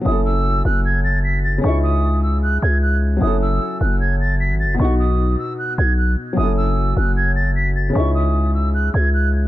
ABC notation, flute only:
X:1
M:4/4
L:1/8
Q:1/4=152
K:F#dor
V:1 name="Flute"
d' e'2 f' g' a' b' a' | c' d'2 e' f' g' f' z | d' e'2 f' g' a' b' a' | c' d'2 e' f' g' f' z |
d' e'2 f' g' a' b' a' | c' d'2 e' f' g' f' z |]